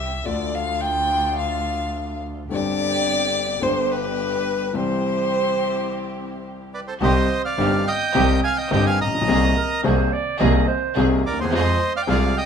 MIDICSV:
0, 0, Header, 1, 7, 480
1, 0, Start_track
1, 0, Key_signature, 0, "major"
1, 0, Tempo, 562852
1, 218, Time_signature, 4, 2, 24, 8
1, 5984, Key_signature, -3, "minor"
1, 10622, End_track
2, 0, Start_track
2, 0, Title_t, "Bandoneon"
2, 0, Program_c, 0, 23
2, 5748, Note_on_c, 0, 74, 69
2, 5749, Note_on_c, 0, 71, 55
2, 5801, Note_off_c, 0, 74, 0
2, 5802, Note_off_c, 0, 71, 0
2, 5863, Note_on_c, 0, 72, 67
2, 5868, Note_on_c, 0, 69, 51
2, 5917, Note_off_c, 0, 72, 0
2, 5922, Note_off_c, 0, 69, 0
2, 5994, Note_on_c, 0, 75, 89
2, 5999, Note_on_c, 0, 72, 73
2, 6328, Note_off_c, 0, 75, 0
2, 6331, Note_off_c, 0, 72, 0
2, 6353, Note_on_c, 0, 77, 82
2, 6359, Note_on_c, 0, 74, 68
2, 6694, Note_off_c, 0, 74, 0
2, 6716, Note_on_c, 0, 79, 100
2, 6721, Note_on_c, 0, 75, 75
2, 6727, Note_off_c, 0, 77, 0
2, 7164, Note_off_c, 0, 79, 0
2, 7167, Note_off_c, 0, 75, 0
2, 7195, Note_on_c, 0, 80, 99
2, 7203, Note_on_c, 0, 77, 76
2, 7305, Note_on_c, 0, 79, 93
2, 7308, Note_off_c, 0, 80, 0
2, 7312, Note_off_c, 0, 77, 0
2, 7318, Note_on_c, 0, 75, 76
2, 7424, Note_off_c, 0, 79, 0
2, 7430, Note_off_c, 0, 75, 0
2, 7438, Note_on_c, 0, 79, 89
2, 7445, Note_on_c, 0, 75, 76
2, 7551, Note_off_c, 0, 79, 0
2, 7555, Note_off_c, 0, 75, 0
2, 7557, Note_on_c, 0, 80, 97
2, 7562, Note_on_c, 0, 77, 77
2, 7670, Note_off_c, 0, 80, 0
2, 7673, Note_off_c, 0, 77, 0
2, 7685, Note_on_c, 0, 82, 96
2, 7686, Note_on_c, 0, 75, 83
2, 8367, Note_off_c, 0, 75, 0
2, 8367, Note_off_c, 0, 82, 0
2, 9604, Note_on_c, 0, 74, 89
2, 9608, Note_on_c, 0, 70, 64
2, 9710, Note_off_c, 0, 70, 0
2, 9720, Note_off_c, 0, 74, 0
2, 9726, Note_on_c, 0, 72, 79
2, 9734, Note_on_c, 0, 68, 56
2, 9833, Note_off_c, 0, 68, 0
2, 9840, Note_off_c, 0, 72, 0
2, 9847, Note_on_c, 0, 75, 100
2, 9857, Note_on_c, 0, 72, 80
2, 10170, Note_off_c, 0, 75, 0
2, 10175, Note_off_c, 0, 72, 0
2, 10201, Note_on_c, 0, 77, 90
2, 10208, Note_on_c, 0, 74, 68
2, 10252, Note_off_c, 0, 74, 0
2, 10253, Note_on_c, 0, 79, 75
2, 10254, Note_off_c, 0, 77, 0
2, 10308, Note_off_c, 0, 79, 0
2, 10309, Note_on_c, 0, 77, 90
2, 10320, Note_on_c, 0, 74, 74
2, 10535, Note_off_c, 0, 74, 0
2, 10551, Note_on_c, 0, 79, 103
2, 10553, Note_off_c, 0, 77, 0
2, 10557, Note_on_c, 0, 75, 83
2, 10622, Note_off_c, 0, 75, 0
2, 10622, Note_off_c, 0, 79, 0
2, 10622, End_track
3, 0, Start_track
3, 0, Title_t, "Violin"
3, 0, Program_c, 1, 40
3, 0, Note_on_c, 1, 76, 82
3, 217, Note_on_c, 1, 74, 87
3, 230, Note_off_c, 1, 76, 0
3, 467, Note_on_c, 1, 77, 92
3, 480, Note_off_c, 1, 74, 0
3, 689, Note_on_c, 1, 79, 101
3, 701, Note_off_c, 1, 77, 0
3, 1175, Note_off_c, 1, 79, 0
3, 1180, Note_on_c, 1, 77, 87
3, 1863, Note_off_c, 1, 77, 0
3, 2144, Note_on_c, 1, 74, 117
3, 3094, Note_on_c, 1, 72, 94
3, 3107, Note_off_c, 1, 74, 0
3, 3335, Note_on_c, 1, 71, 95
3, 3348, Note_off_c, 1, 72, 0
3, 4052, Note_on_c, 1, 72, 96
3, 4065, Note_off_c, 1, 71, 0
3, 5501, Note_off_c, 1, 72, 0
3, 10622, End_track
4, 0, Start_track
4, 0, Title_t, "Clarinet"
4, 0, Program_c, 2, 71
4, 8160, Note_on_c, 2, 70, 83
4, 8397, Note_on_c, 2, 72, 89
4, 8410, Note_off_c, 2, 70, 0
4, 8637, Note_on_c, 2, 74, 98
4, 8650, Note_off_c, 2, 72, 0
4, 8858, Note_off_c, 2, 74, 0
4, 8863, Note_on_c, 2, 75, 105
4, 9091, Note_off_c, 2, 75, 0
4, 9104, Note_on_c, 2, 72, 96
4, 9441, Note_off_c, 2, 72, 0
4, 10622, End_track
5, 0, Start_track
5, 0, Title_t, "String section"
5, 0, Program_c, 3, 48
5, 0, Note_on_c, 3, 60, 71
5, 0, Note_on_c, 3, 64, 65
5, 0, Note_on_c, 3, 67, 81
5, 122, Note_off_c, 3, 60, 0
5, 123, Note_off_c, 3, 64, 0
5, 123, Note_off_c, 3, 67, 0
5, 216, Note_on_c, 3, 57, 75
5, 219, Note_on_c, 3, 62, 64
5, 221, Note_on_c, 3, 65, 83
5, 2038, Note_off_c, 3, 57, 0
5, 2039, Note_off_c, 3, 62, 0
5, 2040, Note_off_c, 3, 65, 0
5, 2141, Note_on_c, 3, 60, 69
5, 2141, Note_on_c, 3, 62, 67
5, 2143, Note_on_c, 3, 67, 83
5, 3040, Note_off_c, 3, 60, 0
5, 3040, Note_off_c, 3, 62, 0
5, 3041, Note_off_c, 3, 67, 0
5, 3090, Note_on_c, 3, 62, 66
5, 3091, Note_on_c, 3, 59, 71
5, 3095, Note_on_c, 3, 67, 76
5, 3994, Note_off_c, 3, 62, 0
5, 3995, Note_off_c, 3, 59, 0
5, 3997, Note_off_c, 3, 67, 0
5, 4043, Note_on_c, 3, 60, 68
5, 4046, Note_on_c, 3, 64, 70
5, 4047, Note_on_c, 3, 67, 81
5, 5889, Note_off_c, 3, 60, 0
5, 5890, Note_off_c, 3, 64, 0
5, 5890, Note_off_c, 3, 67, 0
5, 5985, Note_on_c, 3, 60, 78
5, 5985, Note_on_c, 3, 63, 74
5, 5987, Note_on_c, 3, 67, 90
5, 6188, Note_off_c, 3, 60, 0
5, 6188, Note_off_c, 3, 63, 0
5, 6189, Note_off_c, 3, 67, 0
5, 6473, Note_on_c, 3, 60, 71
5, 6474, Note_on_c, 3, 63, 70
5, 6475, Note_on_c, 3, 67, 82
5, 6676, Note_off_c, 3, 60, 0
5, 6677, Note_off_c, 3, 63, 0
5, 6678, Note_off_c, 3, 67, 0
5, 6951, Note_on_c, 3, 60, 77
5, 6952, Note_on_c, 3, 63, 76
5, 6953, Note_on_c, 3, 67, 96
5, 7156, Note_off_c, 3, 60, 0
5, 7157, Note_off_c, 3, 63, 0
5, 7157, Note_off_c, 3, 67, 0
5, 7433, Note_on_c, 3, 63, 78
5, 7434, Note_on_c, 3, 60, 84
5, 7437, Note_on_c, 3, 67, 89
5, 7639, Note_off_c, 3, 60, 0
5, 7639, Note_off_c, 3, 63, 0
5, 7641, Note_off_c, 3, 67, 0
5, 7920, Note_on_c, 3, 58, 82
5, 7923, Note_on_c, 3, 60, 73
5, 7924, Note_on_c, 3, 68, 91
5, 8122, Note_off_c, 3, 58, 0
5, 8123, Note_off_c, 3, 60, 0
5, 8123, Note_off_c, 3, 68, 0
5, 8397, Note_on_c, 3, 58, 78
5, 8398, Note_on_c, 3, 60, 71
5, 8399, Note_on_c, 3, 68, 81
5, 8598, Note_off_c, 3, 58, 0
5, 8598, Note_off_c, 3, 60, 0
5, 8599, Note_off_c, 3, 68, 0
5, 8872, Note_on_c, 3, 58, 88
5, 8874, Note_on_c, 3, 60, 82
5, 8875, Note_on_c, 3, 68, 100
5, 9074, Note_off_c, 3, 58, 0
5, 9075, Note_off_c, 3, 60, 0
5, 9075, Note_off_c, 3, 68, 0
5, 9348, Note_on_c, 3, 58, 84
5, 9349, Note_on_c, 3, 60, 82
5, 9352, Note_on_c, 3, 68, 96
5, 9550, Note_off_c, 3, 58, 0
5, 9551, Note_off_c, 3, 60, 0
5, 9552, Note_off_c, 3, 68, 0
5, 9827, Note_on_c, 3, 65, 77
5, 9828, Note_on_c, 3, 60, 85
5, 9829, Note_on_c, 3, 68, 94
5, 10028, Note_off_c, 3, 60, 0
5, 10028, Note_off_c, 3, 65, 0
5, 10028, Note_off_c, 3, 68, 0
5, 10305, Note_on_c, 3, 60, 73
5, 10305, Note_on_c, 3, 65, 67
5, 10310, Note_on_c, 3, 68, 87
5, 10505, Note_off_c, 3, 60, 0
5, 10505, Note_off_c, 3, 65, 0
5, 10507, Note_off_c, 3, 68, 0
5, 10622, End_track
6, 0, Start_track
6, 0, Title_t, "Grand piano"
6, 0, Program_c, 4, 0
6, 0, Note_on_c, 4, 36, 61
6, 0, Note_on_c, 4, 48, 65
6, 0, Note_on_c, 4, 52, 51
6, 0, Note_on_c, 4, 55, 49
6, 0, Note_on_c, 4, 60, 49
6, 0, Note_on_c, 4, 67, 57
6, 113, Note_off_c, 4, 52, 0
6, 116, Note_off_c, 4, 55, 0
6, 121, Note_off_c, 4, 48, 0
6, 122, Note_off_c, 4, 36, 0
6, 123, Note_off_c, 4, 60, 0
6, 129, Note_off_c, 4, 67, 0
6, 204, Note_on_c, 4, 53, 53
6, 216, Note_on_c, 4, 57, 50
6, 220, Note_on_c, 4, 50, 63
6, 223, Note_on_c, 4, 38, 59
6, 228, Note_on_c, 4, 62, 51
6, 240, Note_on_c, 4, 69, 63
6, 2032, Note_off_c, 4, 53, 0
6, 2038, Note_off_c, 4, 57, 0
6, 2040, Note_off_c, 4, 50, 0
6, 2041, Note_off_c, 4, 38, 0
6, 2044, Note_off_c, 4, 62, 0
6, 2050, Note_off_c, 4, 69, 0
6, 2126, Note_on_c, 4, 50, 57
6, 2133, Note_on_c, 4, 55, 50
6, 2142, Note_on_c, 4, 43, 69
6, 2144, Note_on_c, 4, 31, 64
6, 2149, Note_on_c, 4, 60, 53
6, 2160, Note_on_c, 4, 67, 60
6, 3032, Note_off_c, 4, 50, 0
6, 3036, Note_off_c, 4, 55, 0
6, 3041, Note_off_c, 4, 43, 0
6, 3042, Note_off_c, 4, 31, 0
6, 3044, Note_off_c, 4, 60, 0
6, 3050, Note_off_c, 4, 67, 0
6, 3071, Note_on_c, 4, 50, 62
6, 3083, Note_on_c, 4, 55, 52
6, 3087, Note_on_c, 4, 31, 73
6, 3088, Note_on_c, 4, 43, 69
6, 3090, Note_on_c, 4, 59, 52
6, 3105, Note_on_c, 4, 67, 65
6, 3985, Note_off_c, 4, 50, 0
6, 3991, Note_off_c, 4, 55, 0
6, 3993, Note_off_c, 4, 31, 0
6, 3993, Note_off_c, 4, 43, 0
6, 3995, Note_off_c, 4, 59, 0
6, 4002, Note_off_c, 4, 67, 0
6, 4027, Note_on_c, 4, 52, 57
6, 4038, Note_on_c, 4, 55, 52
6, 4042, Note_on_c, 4, 48, 64
6, 4043, Note_on_c, 4, 36, 67
6, 4048, Note_on_c, 4, 60, 48
6, 4056, Note_on_c, 4, 67, 59
6, 5881, Note_off_c, 4, 52, 0
6, 5886, Note_off_c, 4, 55, 0
6, 5888, Note_off_c, 4, 48, 0
6, 5889, Note_off_c, 4, 36, 0
6, 5891, Note_off_c, 4, 60, 0
6, 5895, Note_off_c, 4, 67, 0
6, 5979, Note_on_c, 4, 51, 69
6, 5980, Note_on_c, 4, 55, 66
6, 5981, Note_on_c, 4, 36, 83
6, 5981, Note_on_c, 4, 48, 82
6, 5983, Note_on_c, 4, 60, 65
6, 5983, Note_on_c, 4, 67, 72
6, 6185, Note_off_c, 4, 51, 0
6, 6186, Note_off_c, 4, 36, 0
6, 6186, Note_off_c, 4, 48, 0
6, 6186, Note_off_c, 4, 55, 0
6, 6187, Note_off_c, 4, 60, 0
6, 6187, Note_off_c, 4, 67, 0
6, 6464, Note_on_c, 4, 31, 83
6, 6465, Note_on_c, 4, 51, 68
6, 6465, Note_on_c, 4, 55, 69
6, 6466, Note_on_c, 4, 43, 82
6, 6466, Note_on_c, 4, 60, 64
6, 6468, Note_on_c, 4, 67, 82
6, 6672, Note_off_c, 4, 31, 0
6, 6672, Note_off_c, 4, 43, 0
6, 6672, Note_off_c, 4, 51, 0
6, 6672, Note_off_c, 4, 55, 0
6, 6673, Note_off_c, 4, 60, 0
6, 6674, Note_off_c, 4, 67, 0
6, 6944, Note_on_c, 4, 51, 72
6, 6944, Note_on_c, 4, 55, 71
6, 6946, Note_on_c, 4, 36, 89
6, 6948, Note_on_c, 4, 60, 68
6, 6949, Note_on_c, 4, 48, 92
6, 6949, Note_on_c, 4, 67, 82
6, 7153, Note_off_c, 4, 36, 0
6, 7153, Note_off_c, 4, 51, 0
6, 7153, Note_off_c, 4, 55, 0
6, 7155, Note_off_c, 4, 48, 0
6, 7155, Note_off_c, 4, 60, 0
6, 7155, Note_off_c, 4, 67, 0
6, 7426, Note_on_c, 4, 43, 78
6, 7428, Note_on_c, 4, 55, 66
6, 7429, Note_on_c, 4, 31, 85
6, 7429, Note_on_c, 4, 51, 69
6, 7432, Note_on_c, 4, 60, 65
6, 7432, Note_on_c, 4, 67, 81
6, 7635, Note_off_c, 4, 43, 0
6, 7636, Note_off_c, 4, 51, 0
6, 7636, Note_off_c, 4, 55, 0
6, 7637, Note_off_c, 4, 31, 0
6, 7638, Note_off_c, 4, 60, 0
6, 7638, Note_off_c, 4, 67, 0
6, 7732, Note_on_c, 4, 33, 54
6, 7796, Note_off_c, 4, 33, 0
6, 7798, Note_on_c, 4, 34, 65
6, 7858, Note_on_c, 4, 35, 83
6, 7859, Note_off_c, 4, 34, 0
6, 7912, Note_on_c, 4, 51, 75
6, 7914, Note_on_c, 4, 60, 63
6, 7916, Note_on_c, 4, 58, 62
6, 7918, Note_on_c, 4, 36, 87
6, 7918, Note_on_c, 4, 48, 83
6, 7919, Note_off_c, 4, 35, 0
6, 7919, Note_on_c, 4, 68, 83
6, 8117, Note_off_c, 4, 51, 0
6, 8119, Note_off_c, 4, 58, 0
6, 8119, Note_off_c, 4, 60, 0
6, 8120, Note_off_c, 4, 48, 0
6, 8121, Note_off_c, 4, 36, 0
6, 8121, Note_off_c, 4, 68, 0
6, 8388, Note_on_c, 4, 48, 84
6, 8388, Note_on_c, 4, 51, 75
6, 8388, Note_on_c, 4, 58, 69
6, 8390, Note_on_c, 4, 36, 88
6, 8393, Note_on_c, 4, 68, 88
6, 8395, Note_on_c, 4, 60, 69
6, 8593, Note_off_c, 4, 48, 0
6, 8593, Note_off_c, 4, 51, 0
6, 8594, Note_off_c, 4, 36, 0
6, 8594, Note_off_c, 4, 58, 0
6, 8596, Note_off_c, 4, 68, 0
6, 8597, Note_off_c, 4, 60, 0
6, 8872, Note_on_c, 4, 51, 76
6, 8874, Note_on_c, 4, 58, 75
6, 8874, Note_on_c, 4, 60, 70
6, 8876, Note_on_c, 4, 48, 97
6, 8877, Note_on_c, 4, 68, 87
6, 8878, Note_on_c, 4, 36, 90
6, 9074, Note_off_c, 4, 51, 0
6, 9075, Note_off_c, 4, 58, 0
6, 9075, Note_off_c, 4, 60, 0
6, 9076, Note_off_c, 4, 48, 0
6, 9077, Note_off_c, 4, 36, 0
6, 9077, Note_off_c, 4, 68, 0
6, 9351, Note_on_c, 4, 36, 90
6, 9355, Note_on_c, 4, 51, 79
6, 9355, Note_on_c, 4, 58, 68
6, 9356, Note_on_c, 4, 60, 65
6, 9357, Note_on_c, 4, 48, 86
6, 9358, Note_on_c, 4, 68, 85
6, 9552, Note_off_c, 4, 36, 0
6, 9554, Note_off_c, 4, 51, 0
6, 9554, Note_off_c, 4, 58, 0
6, 9555, Note_off_c, 4, 48, 0
6, 9555, Note_off_c, 4, 60, 0
6, 9555, Note_off_c, 4, 68, 0
6, 9650, Note_on_c, 4, 38, 54
6, 9709, Note_off_c, 4, 38, 0
6, 9710, Note_on_c, 4, 39, 69
6, 9762, Note_on_c, 4, 40, 82
6, 9769, Note_off_c, 4, 39, 0
6, 9825, Note_off_c, 4, 40, 0
6, 9827, Note_on_c, 4, 53, 87
6, 9830, Note_on_c, 4, 56, 69
6, 9831, Note_on_c, 4, 41, 87
6, 9833, Note_on_c, 4, 60, 70
6, 9833, Note_on_c, 4, 68, 78
6, 10029, Note_off_c, 4, 56, 0
6, 10030, Note_off_c, 4, 41, 0
6, 10030, Note_off_c, 4, 53, 0
6, 10030, Note_off_c, 4, 68, 0
6, 10031, Note_off_c, 4, 60, 0
6, 10296, Note_on_c, 4, 36, 91
6, 10296, Note_on_c, 4, 56, 65
6, 10296, Note_on_c, 4, 60, 68
6, 10297, Note_on_c, 4, 48, 89
6, 10299, Note_on_c, 4, 53, 73
6, 10300, Note_on_c, 4, 68, 84
6, 10500, Note_off_c, 4, 36, 0
6, 10500, Note_off_c, 4, 56, 0
6, 10500, Note_off_c, 4, 60, 0
6, 10501, Note_off_c, 4, 48, 0
6, 10502, Note_off_c, 4, 53, 0
6, 10502, Note_off_c, 4, 68, 0
6, 10622, End_track
7, 0, Start_track
7, 0, Title_t, "Double bass"
7, 0, Program_c, 5, 43
7, 0, Note_on_c, 5, 36, 74
7, 121, Note_off_c, 5, 36, 0
7, 220, Note_on_c, 5, 38, 70
7, 2040, Note_off_c, 5, 38, 0
7, 2132, Note_on_c, 5, 31, 73
7, 3036, Note_off_c, 5, 31, 0
7, 3087, Note_on_c, 5, 31, 75
7, 3993, Note_off_c, 5, 31, 0
7, 5981, Note_on_c, 5, 36, 93
7, 6186, Note_off_c, 5, 36, 0
7, 6469, Note_on_c, 5, 31, 89
7, 6674, Note_off_c, 5, 31, 0
7, 6951, Note_on_c, 5, 36, 97
7, 7156, Note_off_c, 5, 36, 0
7, 7438, Note_on_c, 5, 31, 98
7, 7641, Note_off_c, 5, 31, 0
7, 7680, Note_on_c, 5, 34, 57
7, 7912, Note_off_c, 5, 34, 0
7, 7917, Note_on_c, 5, 36, 98
7, 8120, Note_off_c, 5, 36, 0
7, 8399, Note_on_c, 5, 36, 97
7, 8599, Note_off_c, 5, 36, 0
7, 8876, Note_on_c, 5, 36, 107
7, 9076, Note_off_c, 5, 36, 0
7, 9349, Note_on_c, 5, 36, 98
7, 9551, Note_off_c, 5, 36, 0
7, 9590, Note_on_c, 5, 39, 66
7, 9820, Note_off_c, 5, 39, 0
7, 9826, Note_on_c, 5, 41, 97
7, 10027, Note_off_c, 5, 41, 0
7, 10306, Note_on_c, 5, 36, 94
7, 10505, Note_off_c, 5, 36, 0
7, 10622, End_track
0, 0, End_of_file